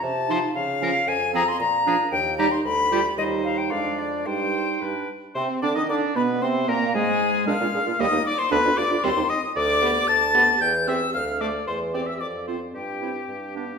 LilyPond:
<<
  \new Staff \with { instrumentName = "Flute" } { \time 2/4 \key bes \dorian \tempo 4 = 114 a''4 f''4 | \key c \minor aes''8 bes''16 c'''16 bes''4 | g''8 bes''16 c'''16 b''4 | ees''8 f''16 g''16 f''8 d''8 |
g''4. r8 | c'''8 d'''16 ees'''16 d'''8 b''8 | c'''8 bes''8 aes''4 | f'''4 ees'''8 d'''16 c'''16 |
b''8 d'''8 c'''8 ees'''8 | \key c \major d'''4 a'''4 | g'''8 e'''8 f'''8 d'''8 | c'''8 d'''16 e'''16 d'''8 c'''8 |
g''4. r8 | }
  \new Staff \with { instrumentName = "Oboe" } { \time 2/4 \key bes \dorian r8 c''16 r8. bes'16 r16 | \key c \minor r8 aes'16 r8. aes'16 r16 | r8 g'16 r8. g'16 r16 | c''4 d''4 |
c''4 b'8 r8 | c''8 d''16 ees''16 d''8 b'8 | c''8 bes'8 aes'4 | f''4 ees''8 d''16 c''16 |
b'8 d''8 c''8 ees''8 | \key c \major d''4 a''4 | g''8 e''8 f''8 d''8 | c''8 d''16 e''16 d''8 c''8 |
g'4. g'8 | }
  \new Staff \with { instrumentName = "Clarinet" } { \time 2/4 \key bes \dorian r8 ees'16 r8. des'16 r16 | \key c \minor r8 c'16 r8. d'16 r16 | r8 ees'16 r8. f'16 r16 | ees'4 d'4 |
ees'4 d'8 r8 | c'8 d'16 ees'16 d'8 b8 | c'8 bes8 aes4 | d'16 f'16 aes'16 f'16 bes16 ees'16 r8 |
d'16 f'16 g'16 f'16 c'16 ees'16 r8 | \key c \major r8 g'16 r8. g'16 r16 | r8 g'16 r8. a'16 r16 | r8 g'16 r8. f'16 r16 |
r8 e'16 r8. d'16 r16 | }
  \new Staff \with { instrumentName = "French horn" } { \time 2/4 \key bes \dorian r8 f16 r8. f16 r16 | \key c \minor r8 f16 r8. f16 r16 | r8 g16 r8. g16 r16 | g4 aes4 |
g4 g8 r8 | c'8 d'16 ees'16 d'8 b8 | c'8 bes8 aes4 | aes16 bes16 d'16 bes16 g16 bes16 r8 |
b16 d'16 f'16 d'16 g16 c'16 r8 | \key c \major r8 b16 r8. b16 r16 | r8 c'16 r8. a16 r16 | r8 c'16 r8. c'16 r16 |
r8 c'16 r8. b16 r16 | }
  \new Staff \with { instrumentName = "Bassoon" } { \clef bass \time 2/4 \key bes \dorian c8. r16 des8. r16 | \key c \minor f,8. r16 bes,8. r16 | ees,8. r16 d,8. r16 | ees,4 f,4 |
g,4 g,8 r8 | c8 d16 ees16 d8 b,8 | c8 bes,8 aes,4 | bes,16 bes,16 bes,16 bes,16 ees,16 ees,16 r8 |
d,16 d,16 d,16 d,16 ees,16 ees,16 r8 | \key c \major d,8. r16 d,8. r16 | e,8. r16 d,8. r16 | e,8. r16 f,8. r16 |
g,8. r16 g,8. r16 | }
>>